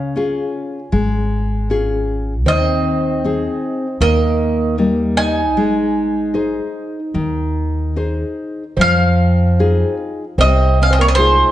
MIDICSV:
0, 0, Header, 1, 5, 480
1, 0, Start_track
1, 0, Key_signature, -4, "major"
1, 0, Tempo, 772201
1, 1546, Time_signature, 4, 2, 24, 8
1, 3947, Tempo, 816327
1, 5387, Tempo, 795756
1, 7026, End_track
2, 0, Start_track
2, 0, Title_t, "Mandolin"
2, 0, Program_c, 0, 25
2, 0, Note_on_c, 0, 77, 77
2, 802, Note_off_c, 0, 77, 0
2, 1543, Note_on_c, 0, 75, 86
2, 2489, Note_off_c, 0, 75, 0
2, 2496, Note_on_c, 0, 75, 86
2, 2952, Note_off_c, 0, 75, 0
2, 3215, Note_on_c, 0, 80, 89
2, 4877, Note_off_c, 0, 80, 0
2, 5395, Note_on_c, 0, 77, 88
2, 6090, Note_off_c, 0, 77, 0
2, 6357, Note_on_c, 0, 75, 92
2, 6611, Note_on_c, 0, 77, 75
2, 6619, Note_off_c, 0, 75, 0
2, 6664, Note_off_c, 0, 77, 0
2, 6671, Note_on_c, 0, 75, 75
2, 6719, Note_off_c, 0, 75, 0
2, 6722, Note_on_c, 0, 73, 77
2, 6763, Note_off_c, 0, 73, 0
2, 6765, Note_on_c, 0, 75, 81
2, 6803, Note_off_c, 0, 75, 0
2, 6805, Note_on_c, 0, 72, 86
2, 7026, Note_off_c, 0, 72, 0
2, 7026, End_track
3, 0, Start_track
3, 0, Title_t, "Nylon-string guitar"
3, 0, Program_c, 1, 24
3, 0, Note_on_c, 1, 49, 56
3, 88, Note_off_c, 1, 49, 0
3, 98, Note_on_c, 1, 61, 45
3, 103, Note_on_c, 1, 65, 39
3, 106, Note_on_c, 1, 68, 52
3, 485, Note_off_c, 1, 61, 0
3, 488, Note_off_c, 1, 65, 0
3, 490, Note_off_c, 1, 68, 0
3, 573, Note_on_c, 1, 56, 64
3, 1045, Note_off_c, 1, 56, 0
3, 1056, Note_on_c, 1, 61, 44
3, 1061, Note_on_c, 1, 65, 44
3, 1063, Note_on_c, 1, 68, 49
3, 1444, Note_off_c, 1, 61, 0
3, 1445, Note_off_c, 1, 65, 0
3, 1448, Note_off_c, 1, 68, 0
3, 1529, Note_on_c, 1, 51, 66
3, 2000, Note_off_c, 1, 51, 0
3, 2017, Note_on_c, 1, 60, 45
3, 2019, Note_on_c, 1, 63, 38
3, 2023, Note_on_c, 1, 68, 49
3, 2401, Note_off_c, 1, 60, 0
3, 2401, Note_off_c, 1, 63, 0
3, 2404, Note_off_c, 1, 68, 0
3, 2492, Note_on_c, 1, 51, 59
3, 2960, Note_off_c, 1, 51, 0
3, 2970, Note_on_c, 1, 58, 42
3, 2972, Note_on_c, 1, 63, 39
3, 2974, Note_on_c, 1, 55, 48
3, 3359, Note_off_c, 1, 58, 0
3, 3359, Note_off_c, 1, 63, 0
3, 3361, Note_off_c, 1, 55, 0
3, 3463, Note_on_c, 1, 56, 61
3, 3933, Note_off_c, 1, 56, 0
3, 3940, Note_on_c, 1, 63, 40
3, 3942, Note_on_c, 1, 68, 42
3, 3946, Note_on_c, 1, 72, 44
3, 4320, Note_off_c, 1, 63, 0
3, 4321, Note_off_c, 1, 68, 0
3, 4324, Note_off_c, 1, 72, 0
3, 4415, Note_on_c, 1, 51, 61
3, 4886, Note_off_c, 1, 51, 0
3, 4896, Note_on_c, 1, 63, 41
3, 4898, Note_on_c, 1, 68, 38
3, 4900, Note_on_c, 1, 72, 45
3, 5286, Note_off_c, 1, 63, 0
3, 5287, Note_off_c, 1, 68, 0
3, 5289, Note_off_c, 1, 72, 0
3, 5384, Note_on_c, 1, 53, 57
3, 5855, Note_off_c, 1, 53, 0
3, 5867, Note_on_c, 1, 63, 46
3, 5870, Note_on_c, 1, 65, 43
3, 5871, Note_on_c, 1, 68, 51
3, 6252, Note_off_c, 1, 63, 0
3, 6253, Note_off_c, 1, 65, 0
3, 6254, Note_off_c, 1, 68, 0
3, 6345, Note_on_c, 1, 48, 64
3, 6811, Note_off_c, 1, 48, 0
3, 6824, Note_on_c, 1, 63, 45
3, 6825, Note_on_c, 1, 65, 40
3, 6829, Note_on_c, 1, 68, 49
3, 7026, Note_off_c, 1, 63, 0
3, 7026, Note_off_c, 1, 65, 0
3, 7026, Note_off_c, 1, 68, 0
3, 7026, End_track
4, 0, Start_track
4, 0, Title_t, "Twelve-string acoustic guitar"
4, 0, Program_c, 2, 25
4, 0, Note_on_c, 2, 61, 76
4, 797, Note_off_c, 2, 61, 0
4, 1530, Note_on_c, 2, 60, 77
4, 2467, Note_off_c, 2, 60, 0
4, 2494, Note_on_c, 2, 58, 70
4, 2951, Note_off_c, 2, 58, 0
4, 3213, Note_on_c, 2, 63, 84
4, 4876, Note_off_c, 2, 63, 0
4, 5368, Note_on_c, 2, 60, 68
4, 6077, Note_off_c, 2, 60, 0
4, 6343, Note_on_c, 2, 60, 81
4, 6586, Note_off_c, 2, 60, 0
4, 6604, Note_on_c, 2, 61, 69
4, 6656, Note_off_c, 2, 61, 0
4, 6658, Note_on_c, 2, 60, 72
4, 6708, Note_on_c, 2, 58, 70
4, 6711, Note_off_c, 2, 60, 0
4, 6761, Note_on_c, 2, 60, 68
4, 6764, Note_off_c, 2, 58, 0
4, 6805, Note_on_c, 2, 56, 64
4, 6818, Note_off_c, 2, 60, 0
4, 7026, Note_off_c, 2, 56, 0
4, 7026, End_track
5, 0, Start_track
5, 0, Title_t, "Upright bass"
5, 0, Program_c, 3, 32
5, 0, Note_on_c, 3, 37, 82
5, 243, Note_off_c, 3, 37, 0
5, 575, Note_on_c, 3, 32, 80
5, 1529, Note_off_c, 3, 32, 0
5, 1529, Note_on_c, 3, 39, 86
5, 2155, Note_off_c, 3, 39, 0
5, 2490, Note_on_c, 3, 39, 80
5, 3453, Note_off_c, 3, 39, 0
5, 3453, Note_on_c, 3, 32, 73
5, 4088, Note_off_c, 3, 32, 0
5, 4414, Note_on_c, 3, 39, 72
5, 5045, Note_off_c, 3, 39, 0
5, 5371, Note_on_c, 3, 41, 88
5, 6002, Note_off_c, 3, 41, 0
5, 6341, Note_on_c, 3, 36, 76
5, 6965, Note_off_c, 3, 36, 0
5, 7026, End_track
0, 0, End_of_file